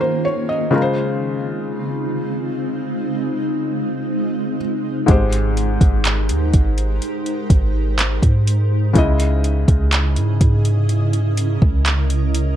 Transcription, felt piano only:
0.00 0.68 D#3 medium
0.00 0.69 A#3 medium
0.00 0.69 G#4 medium
0.00 0.74 A#4 medium
0.00 0.23 C5 medium
0.25 0.48 C#5 medium
0.49 0.95 D#5 medium
0.71 4.55 C#3 medium
0.71 4.56 G#3 medium
0.71 4.56 F4 medium
0.76 0.81 A#4 medium
0.82 4.60 C5 medium
5.06 8.90 G#2 medium
5.06 8.91 G#3 medium
5.06 8.92 G4 medium
5.11 8.93 C5 medium
8.93 12.56 C#3 medium
8.93 12.56 G#3 medium
8.93 12.56 E4 medium
8.98 12.56 D#5 medium

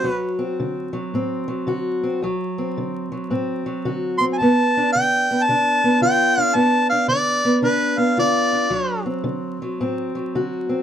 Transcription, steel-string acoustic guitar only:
0.00 0.54 D2 medium
0.00 0.42 F#4 medium
0.04 0.92 F#3 medium
0.39 1.14 C4 medium
0.60 1.10 D3 medium
0.93 1.47 F#3 medium
1.14 1.64 A2 medium
1.14 2.02 C4 medium
1.48 2.22 F#3 medium
1.67 2.17 D3 medium
1.67 2.20 F#4 medium
2.04 2.20 C4 medium
2.22 2.72 D2 medium
2.22 3.11 F#3 medium
2.58 3.30 C4 medium
2.77 3.27 D3 medium
3.12 3.65 F#3 medium
3.30 3.81 A2 medium
3.30 4.20 C4 medium
3.66 4.39 F#3 medium
3.85 4.35 D3 medium
3.85 4.37 F#4 medium
4.21 4.37 C4 medium
4.41 4.90 G2 medium
4.41 5.30 B3 medium
4.77 5.49 D4 medium
4.95 5.44 D3 medium
5.31 5.83 B3 medium
5.49 5.98 D3 medium
5.49 6.37 D4 medium
5.84 6.54 B3 medium
6.01 6.51 D3 medium
6.01 6.53 F4 medium
6.38 6.92 D4 medium
6.54 7.05 G2 medium
6.54 7.44 B3 medium
6.92 7.62 D4 medium
7.08 7.59 D3 medium
7.45 7.97 B3 medium
7.62 8.13 D3 medium
7.62 8.52 D4 medium
7.98 8.69 B3 medium
8.17 8.67 D3 medium
8.17 8.69 F4 medium
8.53 9.05 D4 medium
8.70 9.21 D2 medium
8.70 9.61 F#3 medium
9.06 9.80 C4 medium
9.24 9.75 D3 medium
9.62 10.14 F#3 medium
9.80 10.30 A2 medium
9.80 10.68 C4 medium
10.15 10.82 F#3 medium
10.35 10.82 D3 medium
10.35 10.82 F#4 medium
10.69 10.82 C4 medium

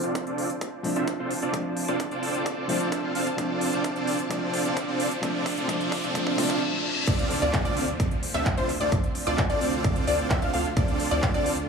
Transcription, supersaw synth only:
0.04 0.24 C4 medium
0.04 0.24 D4 medium
0.04 0.24 F4 medium
0.04 0.24 A4 medium
0.04 0.24 D5 loud
0.27 0.47 C4 loud
0.27 0.47 D4 medium
0.27 0.47 F4 medium
0.27 0.47 A4 medium
0.27 0.47 D5 loud
0.96 1.08 C4 medium
0.96 1.08 D4 medium
0.96 1.08 F4 medium
0.96 1.08 A4 medium
0.96 1.08 E5 loud
1.19 1.32 C4 medium
1.19 1.32 D4 medium
1.19 1.32 F4 medium
1.19 1.32 A4 medium
1.19 1.32 C5 loud
1.42 1.55 C4 medium
1.42 1.55 D4 medium
1.42 1.55 F4 medium
1.42 1.55 A4 medium
1.42 1.55 D5 medium
1.88 2.01 C4 medium
1.88 2.01 D4 medium
1.88 2.01 F4 medium
1.88 2.01 A4 medium
1.88 2.01 D5 loud
2.11 2.66 C4 medium
2.11 2.66 D4 medium
2.11 2.66 F4 medium
2.11 2.66 A4 medium
2.11 2.66 D5 medium
2.69 2.89 C4 medium
2.69 2.89 D4 medium
2.69 2.89 F4 medium
2.69 2.89 A4 medium
2.69 2.89 D5 medium
2.92 3.01 C4 medium
2.92 3.01 D4 medium
2.92 3.01 F4 medium
2.92 3.01 A4 medium
2.92 3.01 E5 loud
3.04 3.12 C4 medium
3.04 3.12 D4 medium
3.04 3.12 F4 medium
3.04 3.12 A4 medium
3.04 3.12 F5 medium
3.15 3.28 C4 medium
3.15 3.28 D4 medium
3.15 3.28 F4 medium
3.15 3.28 A4 medium
3.15 3.28 F5 medium
3.38 3.70 C4 medium
3.38 3.70 D4 medium
3.38 3.70 F4 medium
3.38 3.70 A4 medium
3.38 3.70 D5 medium
3.73 3.93 C4 medium
3.73 3.93 D4 medium
3.73 3.93 F4 medium
3.73 3.93 A4 medium
3.73 3.93 D5 medium
3.96 4.16 C4 medium
3.96 4.16 D4 medium
3.96 4.16 F4 medium
3.96 4.16 A4 medium
3.96 4.16 D5 loud
4.30 4.62 C4 medium
4.30 4.62 D4 medium
4.30 4.62 F4 medium
4.30 4.62 A4 medium
4.30 4.62 D5 medium
4.65 4.85 C4 medium
4.65 4.85 D4 medium
4.65 4.85 F4 medium
4.65 4.85 A4 medium
4.65 4.85 D5 medium
4.88 5.08 C4 medium
4.88 5.08 D4 medium
4.88 5.08 F4 medium
4.88 5.08 A4 medium
4.88 5.08 D5 loud
5.23 5.55 C4 medium
5.23 5.55 D4 medium
5.23 5.55 F4 medium
5.23 5.55 A4 medium
5.23 5.55 D5 medium
5.57 5.67 C4 medium
5.57 5.67 D4 medium
5.57 5.67 F4 medium
5.57 5.67 A4 medium
5.57 5.67 D5 loud
5.69 6.01 C4 medium
5.69 6.01 D4 medium
5.69 6.01 F4 medium
5.69 6.01 A4 medium
5.69 6.01 D5 medium
6.04 6.13 C4 medium
6.04 6.13 D4 medium
6.04 6.13 F4 medium
6.04 6.13 A4 medium
6.04 6.13 D5 loud
6.15 6.36 C4 medium
6.15 6.36 D4 medium
6.15 6.36 F4 medium
6.15 6.36 A4 medium
6.15 6.36 D5 medium
6.38 6.59 C4 medium
6.38 6.59 D4 medium
6.38 6.59 F4 medium
6.38 6.59 A4 medium
6.38 6.59 D5 medium
7.07 7.39 C4 medium
7.07 7.39 D4 medium
7.07 7.39 F4 medium
7.07 7.39 A4 medium
7.07 7.39 D5 medium
7.42 7.62 C4 medium
7.42 7.62 D4 medium
7.42 7.62 F4 medium
7.42 7.62 A4 medium
7.42 7.62 D5 loud
7.65 7.85 C4 loud
7.65 7.85 D4 medium
7.65 7.85 F4 medium
7.65 7.85 A4 medium
7.65 7.85 D5 loud
8.34 8.47 C4 loud
8.34 8.47 D4 medium
8.34 8.47 F4 medium
8.34 8.47 A4 medium
8.34 8.47 E5 loud
8.58 8.70 C4 medium
8.58 8.70 D4 medium
8.58 8.70 F4 medium
8.58 8.70 A4 medium
8.58 8.70 C5 loud
8.81 8.93 C4 medium
8.81 8.93 D4 medium
8.81 8.93 F4 medium
8.81 8.93 A4 medium
8.81 8.93 D5 medium
9.27 9.39 C4 medium
9.27 9.39 D4 medium
9.27 9.39 F4 medium
9.27 9.39 A4 medium
9.27 9.39 D5 loud
9.50 10.05 C4 medium
9.50 10.05 D4 medium
9.50 10.05 F4 medium
9.50 10.05 A4 medium
9.50 10.05 D5 loud
10.08 10.28 C4 medium
10.08 10.28 D4 medium
10.08 10.28 F4 medium
10.08 10.28 A4 medium
10.08 10.28 D5 loud
10.31 10.39 C4 medium
10.31 10.39 D4 medium
10.31 10.39 F4 medium
10.31 10.39 A4 medium
10.31 10.39 E5 loud
10.42 10.51 C4 medium
10.42 10.51 D4 medium
10.42 10.51 F4 medium
10.42 10.51 A4 medium
10.42 10.51 F5 medium
10.54 10.66 C4 medium
10.54 10.66 D4 medium
10.54 10.66 F4 medium
10.54 10.66 A4 medium
10.54 10.66 F5 medium
10.77 11.09 C4 medium
10.77 11.09 D4 medium
10.77 11.09 F4 medium
10.77 11.09 A4 medium
10.77 11.09 D5 medium
11.11 11.32 C4 medium
11.11 11.32 D4 medium
11.11 11.32 F4 medium
11.11 11.32 A4 medium
11.11 11.32 D5 loud
11.34 11.54 C4 loud
11.34 11.54 D4 medium
11.34 11.54 F4 medium
11.34 11.54 A4 medium
11.34 11.54 D5 loud

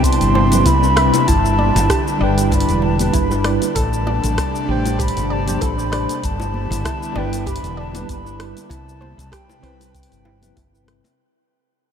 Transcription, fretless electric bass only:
0.00 0.17 C2 loud
0.21 0.63 G1 medium
0.66 1.10 C2 medium
1.28 1.72 G1 medium
1.75 1.88 G1 medium
2.21 2.65 G1 loud
2.69 3.11 E1 medium
3.14 3.58 G1 medium
3.76 4.20 A1 loud
4.24 4.36 A1 medium
4.69 5.12 A1 loud
5.17 5.58 G1 medium
5.62 6.05 A1 medium
6.24 6.67 G1 loud
6.70 6.83 G1 medium
7.16 7.60 G1 loud
7.63 8.05 E1 medium
8.09 8.53 G1 medium
8.70 9.14 C2 loud
9.18 9.30 C2 medium
9.63 10.07 C2 loud
10.12 10.53 G1 medium
10.56 11.00 G1 loud

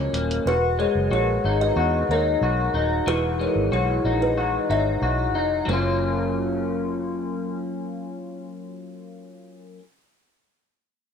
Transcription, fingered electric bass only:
0.13 0.39 D#1 medium
0.46 0.85 E1 medium
0.95 1.08 F#1 medium
1.11 1.37 A#1 medium
1.44 1.70 G#1 medium
1.76 2.02 E2 loud
2.09 2.35 D#2 medium
2.41 2.68 B1 medium
2.74 3.00 D#1 medium
3.07 3.46 E1 medium
3.56 3.69 G#1 medium
3.72 3.98 B1 medium
4.04 4.57 A#1 medium
4.70 4.96 G#1 medium
5.02 5.35 B1 medium
5.34 5.61 F1 medium
5.68 9.75 F#1 medium

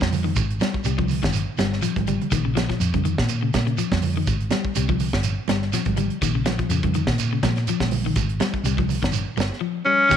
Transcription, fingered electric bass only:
0.01 0.33 F2 medium
0.36 0.59 G#1 medium
0.85 1.19 C2 medium
1.23 1.45 G1 medium
1.58 1.80 G1 medium
1.96 2.18 G#1 medium
2.32 2.77 A#1 medium
2.80 3.14 F2 medium
3.18 3.51 A#2 medium
3.54 3.76 A#2 medium
3.79 muted fingered electric bass stroke soft
3.92 4.24 F2 medium
4.27 4.49 G#1 medium
4.76 5.10 C2 medium
5.13 5.35 G1 medium
5.48 5.71 G1 medium
5.86 6.08 G#1 medium
6.22 6.66 A#1 medium
6.69 7.04 F2 medium
7.07 7.40 A#2 medium
7.43 7.65 A#2 medium
7.67 muted fingered electric bass stroke soft
7.80 8.13 A#1 medium
8.16 8.38 G#1 medium
8.63 8.98 C2 medium
9.02 9.25 G1 medium
9.37 9.49 G1 medium
10.11 10.17 A#1 loud

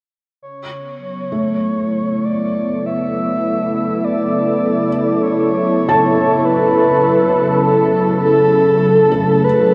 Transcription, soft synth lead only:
0.43 2.26 C#5 medium
2.25 2.84 D5 medium
2.86 4.06 E5 medium
4.04 5.23 D5 medium
5.23 6.46 C#5 medium
6.45 7.62 B4 medium
7.63 8.19 A4 medium
8.24 9.45 A4 loud
9.44 9.74 B4 medium

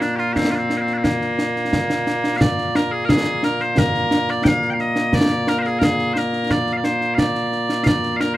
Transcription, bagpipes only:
0.00 8.37 A#2 medium
0.00 0.77 A#3 medium
0.00 0.16 D4 medium
0.16 0.33 F4 medium
0.16 0.19 G4 medium
0.33 0.51 C4 medium
0.33 0.37 G4 medium
0.51 0.58 D4 medium
0.51 0.55 F4 medium
0.58 0.77 C4 medium
0.77 0.81 A#3 medium
0.77 0.94 C4 medium
0.94 0.98 D4 medium
0.98 1.04 C4 medium
1.04 2.37 A#3 medium
2.37 2.76 D5 loud
2.37 2.41 F5 loud
2.76 2.92 A#4 medium
2.92 3.05 G#4 medium
3.05 3.09 A#4 loud
3.09 3.44 G#4 loud
3.44 3.61 A#4 loud
3.61 3.78 C5 medium
3.78 4.30 A#4 loud
4.30 4.44 D5 loud
4.44 4.70 F5 loud
4.44 4.47 G5 loud
4.70 4.81 F5 medium
4.70 4.73 G5 medium
4.81 5.15 D#5 loud
5.15 5.48 D5 loud
5.48 5.58 A#4 medium
5.58 5.66 A#4 medium
5.58 5.62 C5 medium
5.66 5.79 G#4 medium
5.79 5.83 A#4 loud
5.83 6.13 G#4 loud
6.13 6.18 C5 medium
6.18 6.51 A#4 medium
6.51 6.73 D5 loud
6.73 6.77 F5 medium
6.77 6.84 D5 medium
6.84 7.15 C5 medium
7.15 7.84 D5 loud
7.15 7.18 F5 loud
7.84 8.17 D5 loud
7.84 7.87 F5 loud
8.17 8.34 A#4 medium
8.17 8.20 F5 medium
8.34 8.37 C5 medium

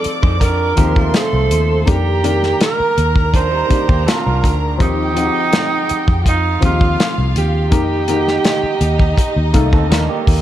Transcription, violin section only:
0.00 0.74 D5 medium
0.00 0.74 D6 medium
0.79 1.86 C5 medium
0.79 1.86 C6 medium
1.88 4.76 A#4 medium
1.88 4.76 A#5 medium
4.79 6.23 G4 medium
4.79 6.23 G5 medium
6.26 7.69 F4 medium
6.26 7.69 F5 medium
7.71 10.42 D#4 medium
7.71 10.42 D#5 medium

